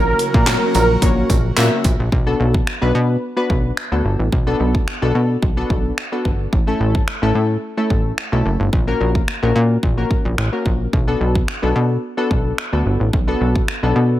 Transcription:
Already playing: A#1 C#3 F#3 A#3 C#4 F#4 A#4 C#5
0.19 closed hi-hat
0.34 A#2 A#4, kick
0.47 A#3 C#4 F#4 A#4 C#5, snare, clap, closed hi-hat, tambourine
0.74 A#1 A#4, closed hi-hat, tambourine
1.02 A#1 A#3 C#4 F#4 A#4 C#5, kick, closed hi-hat, tambourine
1.29 A#1, kick, closed hi-hat, tambourine
1.57 A#2 A#3 C#4 F#4 A#4 E5, snare, clap, closed hi-hat, tambourine
1.84 A#1, kick, closed hi-hat, tambourine
1.99 A#1
2.12 B1, kick
2.26 B3 D4 F#4 A4
2.40 B1
2.54 kick
2.67 finger snap
2.81 B1 B3 D4 F#4 B4
2.95 B2
3.36 B3 D4 F#4 B4
3.50 B1, kick
3.77 finger snap
3.92 D2 B3 D4 F#4 A4
4.05 G1
4.19 A1
4.32 B1, kick
4.47 B3 D4 F#4 A4
4.60 B1
4.75 kick
4.88 finger snap
5.02 B1 B3 D4 F#4 A4
5.15 B2
5.42 B1, kick
5.57 B3 D4 F#4 A4
5.70 B1, kick
5.98 finger snap
6.12 B3 D4 F#4 A4
6.25 G1, kick
6.53 A1, kick
6.67 A3 C#4 E4 A4
6.80 A1
6.95 kick
7.08 finger snap
7.22 A1 A3 C#4 E4 A4
7.35 A2
7.77 A3 C#4 E4 A4
7.90 A1, kick
8.18 finger snap
8.32 B1 A3 C#4 E4 A4
8.46 F#1
8.60 G1
8.73 A#1, kick
8.87 A#3 C#4 F#4 A#4
9.01 A#1
9.15 kick
9.28 finger snap
9.42 A#1 A#3 C#4 F#4 A#4
9.56 A#2
9.83 A#1, kick
9.97 A#3 C#4 F#4 A#4
10.11 A#1, kick
10.25 A#1
10.38 A1, finger snap
10.52 A#3 C#4 F#4 A#4
10.66 A#1, kick
10.93 B1, kick
11.07 B3 D4 F#4 A4
11.21 B1
11.35 kick
11.48 finger snap
11.62 B1 B3 D4 F#4 A4
11.76 B2
12.17 B3 D4 F#4 A4
12.31 B1, kick
12.58 finger snap
12.72 D2 B3 D4 F#4 A4
12.86 G1
13.00 A1
13.13 B1, kick
13.27 B3 D4 F#4 A4
13.41 B1
13.56 kick
13.68 finger snap
13.83 B1 B3 D4 F#4 A4
13.96 B2

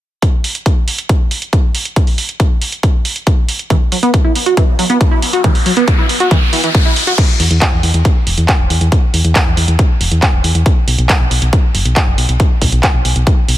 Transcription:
0.22 kick, closed hi-hat
0.44 open hi-hat
0.55 closed hi-hat
0.66 kick, closed hi-hat
0.88 open hi-hat
0.98 closed hi-hat
1.09 kick, closed hi-hat
1.31 open hi-hat
1.42 closed hi-hat
1.53 kick, closed hi-hat
1.75 open hi-hat
1.85 closed hi-hat
1.96 kick, closed hi-hat
2.07 open hi-hat
2.18 open hi-hat
2.29 closed hi-hat
2.40 kick, closed hi-hat
2.62 open hi-hat
2.72 closed hi-hat
2.83 kick, closed hi-hat
3.05 open hi-hat
3.16 closed hi-hat
3.27 kick, closed hi-hat
3.48 open hi-hat
3.59 closed hi-hat
3.70 E3, kick, closed hi-hat, riser
3.92 F#3, open hi-hat
4.03 B3, closed hi-hat
4.14 kick, closed hi-hat
4.25 E4
4.35 open hi-hat
4.46 F#4, closed hi-hat
4.57 E3, kick, closed hi-hat
4.79 F#3, open hi-hat
4.90 B3, closed hi-hat
5.01 kick, closed hi-hat
5.11 E4
5.22 open hi-hat
5.33 F#4, closed hi-hat
5.44 E3, kick, closed hi-hat
5.55 open hi-hat
5.66 F#3, open hi-hat
5.77 B3, closed hi-hat
5.88 kick, closed hi-hat
5.98 E4
6.09 open hi-hat
6.20 F#4, closed hi-hat
6.31 E3, kick, closed hi-hat
6.53 E3, open hi-hat
6.64 E3, closed hi-hat
6.75 kick, closed hi-hat
6.85 E4
6.96 open hi-hat
7.07 F#4, closed hi-hat
7.18 kick, closed hi-hat, crash
7.40 E2, open hi-hat
7.51 E2, closed hi-hat
7.62 kick, clap, closed hi-hat
7.72 E2
7.83 E2, open hi-hat
7.94 E2, closed hi-hat
8.05 kick, closed hi-hat
8.27 E1, open hi-hat
8.38 E2, closed hi-hat
8.48 kick, clap, closed hi-hat
8.59 E1
8.70 E2, open hi-hat
8.81 E2, closed hi-hat
8.92 kick, closed hi-hat
9.14 E2, open hi-hat
9.25 E2, closed hi-hat
9.35 kick, clap, closed hi-hat
9.46 E2
9.57 E2, open hi-hat
9.68 E2, closed hi-hat
9.79 kick, closed hi-hat
10.01 E1, open hi-hat
10.12 E2, closed hi-hat
10.22 kick, clap, closed hi-hat
10.33 E1
10.44 E2, open hi-hat
10.55 E2, closed hi-hat
10.66 kick, closed hi-hat
10.88 B1, open hi-hat
10.98 B1, closed hi-hat
11.09 kick, clap, closed hi-hat
11.20 B1
11.31 B1, open hi-hat
11.42 B1, closed hi-hat
11.53 kick, closed hi-hat
11.75 F#1, open hi-hat
11.85 B1, closed hi-hat
11.96 kick, clap, closed hi-hat
12.07 F#1
12.18 B1, open hi-hat
12.29 B1, closed hi-hat
12.40 kick, closed hi-hat
12.62 B1, kick, open hi-hat
12.72 B1, closed hi-hat
12.83 kick, clap, closed hi-hat
12.94 B1
13.05 B1, open hi-hat
13.16 B1, closed hi-hat
13.27 kick, closed hi-hat
13.48 B1, open hi-hat

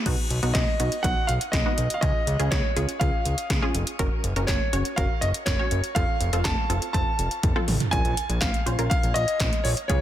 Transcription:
0.06 B1 B3 D#4 F#4, kick, closed hi-hat, crash
0.30 B1, closed hi-hat
0.43 B1 B3 D#4 F#4, closed hi-hat
0.54 B1 D#5, kick, snare, closed hi-hat
0.80 B1 B3 D#4 F#4, closed hi-hat
0.92 closed hi-hat
1.03 B1 B3 D#4 F#4 F#5, kick, closed hi-hat
1.27 B1 F5, closed hi-hat
1.41 closed hi-hat
1.52 B1 D#5, kick, snare, closed hi-hat
1.66 B3 D#4 F#4
1.78 B1, closed hi-hat
1.90 F5, closed hi-hat
2.01 C#2 C#4 F4 G#4 D#5, kick, closed hi-hat
2.27 C#2, closed hi-hat
2.39 C#2 C#4 F4 G#4, closed hi-hat
2.51 C#2 C#5, kick, snare, closed hi-hat
2.76 C#2 C#4 F4 G#4, closed hi-hat
2.89 closed hi-hat
3.00 C#2 C#4 F4 G#4 F5, kick, closed hi-hat
3.25 C#2, closed hi-hat
3.38 closed hi-hat
3.50 C#2, kick, snare, closed hi-hat
3.62 C#4 F4 G#4
3.75 F1, closed hi-hat
3.87 closed hi-hat
3.99 F#1 C#4 F#4 A#4, kick, closed hi-hat
4.24 F#1, closed hi-hat
4.36 F#1 C#4 F#4 A#4, closed hi-hat
4.47 F#1 C#5, kick, snare, clap, closed hi-hat
4.73 F#1 C#4 F#4 C#5, closed hi-hat
4.85 closed hi-hat
4.96 F#1 C#4 F#4 A#4 F5, kick, closed hi-hat
5.21 F#1 D#5, closed hi-hat
5.34 closed hi-hat
5.46 F#1 C#5, kick, snare, clap, closed hi-hat
5.59 C#4 F#4 C#5
5.71 F#1, closed hi-hat
5.84 closed hi-hat
5.95 F1 C4 F4 A4 F5, kick, closed hi-hat
6.21 F1, closed hi-hat
6.33 F1 C4 F4 A4, closed hi-hat
6.44 F1 A5, kick, snare, clap, closed hi-hat
6.70 F1 C4 F4 A4, closed hi-hat
6.82 closed hi-hat
6.93 F1 C4 F4 A4 A5, kick, closed hi-hat
7.19 F1, closed hi-hat
7.31 closed hi-hat
7.43 F1, kick, closed hi-hat, high tom
7.56 C4 F4 A4, mid tom
7.68 A1, mid tom, open hi-hat
7.80 closed hi-hat, floor tom
7.91 A#1 C#4 F4 A#4 G#5, kick, closed hi-hat
8.05 A#1, closed hi-hat
8.17 closed hi-hat
8.29 A#1, closed hi-hat
8.41 A#1 F5, kick, snare, clap, closed hi-hat
8.54 closed hi-hat
8.66 A#1 C#4 F4 C5, closed hi-hat
8.79 A#1 C#4 F4 A#4, closed hi-hat
8.90 F5, kick, closed hi-hat
9.03 A#1, closed hi-hat
9.14 A#1 D#5, closed hi-hat
9.28 closed hi-hat
9.40 A#1, kick, snare, clap, closed hi-hat
9.53 closed hi-hat
9.64 A#1 C#5, open hi-hat
9.77 closed hi-hat
9.88 C#2 C#4 F4 G#4 C#5, kick, closed hi-hat

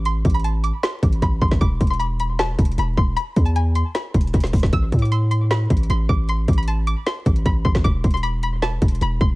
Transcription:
Already playing: A1
0.05 C6, closed hi-hat
0.25 A1, kick, closed hi-hat
0.30 closed hi-hat
0.34 B5, closed hi-hat
0.40 closed hi-hat
0.44 A5, closed hi-hat
0.64 D6, closed hi-hat
0.83 C6, snare, closed hi-hat
1.03 A1, kick, closed hi-hat
1.13 closed hi-hat
1.22 A1 B5, kick, closed hi-hat
1.41 A1 C6, kick
1.51 kick, snare
1.61 E1 D6, kick, closed hi-hat
1.81 E1, kick, closed hi-hat
1.87 C6, closed hi-hat
1.94 closed hi-hat
1.99 B5, closed hi-hat
2.20 B5, closed hi-hat
2.39 A5, snare, closed hi-hat
2.58 E1, kick, closed hi-hat
2.65 closed hi-hat
2.72 closed hi-hat
2.78 E1 B5, closed hi-hat
2.97 E1 C6, kick
3.17 B5, closed hi-hat
3.36 E2, kick, closed hi-hat
3.45 A5, closed hi-hat
3.56 G#5, closed hi-hat
3.75 C6, closed hi-hat
3.95 B5, snare, closed hi-hat
4.14 E1, kick, closed hi-hat
4.21 closed hi-hat
4.27 closed hi-hat
4.34 E1, kick, closed hi-hat
4.40 snare, closed hi-hat
4.47 closed hi-hat
4.53 E1, kick, closed hi-hat, open hi-hat
4.60 kick, snare, closed hi-hat
4.66 closed hi-hat
4.73 A1 E6, kick, closed hi-hat
4.92 A2, kick, closed hi-hat
4.99 D6, closed hi-hat
5.05 closed hi-hat
5.12 C6, closed hi-hat
5.31 C6, closed hi-hat
5.51 B5, snare, closed hi-hat
5.70 A1, kick, closed hi-hat
5.77 closed hi-hat
5.83 closed hi-hat
5.90 A1 C6, closed hi-hat
6.09 A1 D6, kick
6.29 C6, closed hi-hat
6.48 A1, kick, closed hi-hat
6.53 closed hi-hat
6.58 B5, closed hi-hat
6.63 closed hi-hat
6.68 A5, closed hi-hat
6.87 D6, closed hi-hat
7.06 C6, snare, closed hi-hat
7.26 A1, kick, closed hi-hat
7.36 closed hi-hat
7.46 A1 B5, kick, closed hi-hat
7.65 A1 C6, kick
7.75 kick, snare
7.84 E1 D6, kick, closed hi-hat
8.04 E1, kick, closed hi-hat
8.11 C6, closed hi-hat
8.17 closed hi-hat
8.23 B5, closed hi-hat
8.43 B5, closed hi-hat
8.62 A5, snare, closed hi-hat
8.82 E1, kick, closed hi-hat
8.88 closed hi-hat
8.95 closed hi-hat
9.01 E1 B5, closed hi-hat
9.21 E1 C6, kick

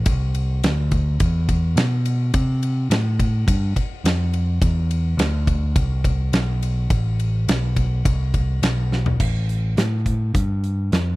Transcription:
0.06 C2, kick, ride
0.35 ride
0.63 D2, snare, ride
0.91 kick, ride
1.20 E2, kick, ride
1.49 kick, ride
1.76 B2, snare, ride
2.05 ride
2.34 C3, kick, ride
2.63 ride
2.90 A2, snare, ride
3.19 kick, ride
3.47 G2, kick, ride
3.76 muted picked electric bass stroke, kick, ride
4.04 F2, snare, ride
4.33 ride
4.61 E2, kick, ride
4.91 ride
5.17 D2, snare, ride
5.47 kick, ride
5.76 C2, kick, ride
6.04 kick, ride
6.32 B1, snare, ride
6.63 ride
6.90 A1, kick, ride
7.20 ride
7.48 B1, snare, ride
7.76 kick, ride
8.05 C2, kick, ride
8.34 kick, ride
8.62 B1, snare, ride
8.92 snare
9.06 floor tom
9.19 A1, kick, crash
9.49 closed hi-hat
9.77 A2, snare, closed hi-hat
10.06 kick, closed hi-hat
10.34 G2, kick, closed hi-hat
10.64 closed hi-hat
10.92 F2, snare, closed hi-hat

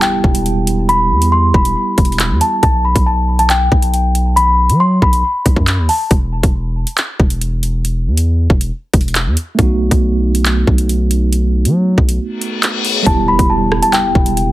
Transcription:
Already playing: G3 B3 E4 G4, impact
0.02 G5, clap, closed hi-hat
0.24 E1, kick
0.35 closed hi-hat
0.46 closed hi-hat
0.67 closed hi-hat
0.89 B5, closed hi-hat
1.11 E2
1.22 closed hi-hat
1.32 C6
1.54 E1 B5, kick
1.65 closed hi-hat
1.98 E1, kick, closed hi-hat
2.05 closed hi-hat
2.12 closed hi-hat
2.19 clap, closed hi-hat
2.30 E2
2.41 A5, closed hi-hat
2.63 B1 A5, kick, closed hi-hat
2.85 B5
2.96 B1, kick, closed hi-hat
3.06 A5
3.39 A5, closed hi-hat
3.50 G5, clap, closed hi-hat
3.72 B1, kick
3.82 closed hi-hat
3.94 closed hi-hat
4.15 closed hi-hat
4.36 B5, closed hi-hat
4.69 F#3, closed hi-hat
4.80 C6
5.02 B1 B5, kick
5.13 closed hi-hat
5.46 B1, kick, closed hi-hat
5.56 F#2, kick
5.67 clap, closed hi-hat
5.78 D#2
5.89 A5, open hi-hat
6.11 E1, kick, closed hi-hat
6.43 E1, kick, closed hi-hat
6.87 closed hi-hat
6.98 clap, closed hi-hat
7.20 E1, kick
7.30 closed hi-hat
7.41 closed hi-hat
7.63 closed hi-hat
7.85 closed hi-hat
8.06 E2
8.17 closed hi-hat
8.50 E1, kick
8.61 closed hi-hat
8.94 E1, kick, closed hi-hat
9.01 closed hi-hat
9.08 closed hi-hat
9.15 clap, closed hi-hat
9.26 E2
9.37 closed hi-hat
9.55 B1 A3 B3, kick, closed hi-hat
9.60 D#4 F#4
9.91 B1, kick, closed hi-hat
10.35 closed hi-hat
10.46 clap, closed hi-hat
10.67 B1, kick
10.78 closed hi-hat
10.89 closed hi-hat
11.11 closed hi-hat
11.33 closed hi-hat
11.65 F#3, closed hi-hat
11.98 B1, kick
12.09 closed hi-hat
12.20 reverse cymbal
12.41 closed hi-hat
12.63 clap, closed hi-hat
12.85 open hi-hat
13.02 G3 B3
13.06 E1 E4 G4 A5, kick, closed hi-hat, impact
13.28 B5
13.39 E1, kick, closed hi-hat
13.50 A5
13.72 cross-stick
13.82 A5, closed hi-hat
13.93 G5, clap, closed hi-hat
14.15 E1, kick
14.26 closed hi-hat
14.37 closed hi-hat

